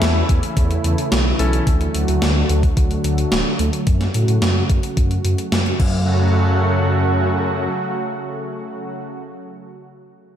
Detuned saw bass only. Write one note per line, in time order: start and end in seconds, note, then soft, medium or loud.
0.02 0.23 E2 medium
0.29 0.40 E2 medium
0.57 0.78 E2 medium
0.84 0.95 E2 medium
1.12 1.33 B1 medium
1.39 1.60 B1 loud
1.67 1.88 D2 loud
1.94 2.05 D2 medium
2.08 2.19 D2 loud
2.22 2.43 D2 medium
2.49 2.70 D2 loud
2.77 2.98 D2 loud
3.04 3.25 D2 medium
3.32 3.42 D1 medium
3.59 3.70 D2 loud
3.87 4.08 F#2 medium
4.15 4.25 A2 medium
4.28 4.39 A2 medium
4.42 4.63 F#2 medium
4.70 4.80 F#2 medium
4.97 5.18 F#2 medium
5.24 5.35 F#2 medium
5.52 5.73 F#2 medium
5.80 7.68 F#2 loud